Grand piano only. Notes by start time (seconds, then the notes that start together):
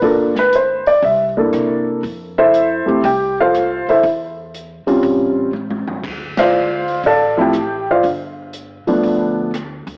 0.02 A#3 D4 F4 A4 A#4
0.39 B4
0.56 C5
0.87 D5
1.05 E5
1.37 A#3 D4 E4 A4
2.38 E4 A4 C5 E5
2.86 A3 C4 E4 G4
3.05 G4 G5
3.40 F4 A4 C5 F5
3.89 E4 A4 C5 E5
4.87 G3 C4 C#4 F4
6.39 F4 C5 D5 F5
7.06 A4 D5 F5 A5
7.37 F3 A3 C4 E4 G5
7.42 G4
7.91 F4 C5 D5 F5
8.87 F3 A3 B3 D4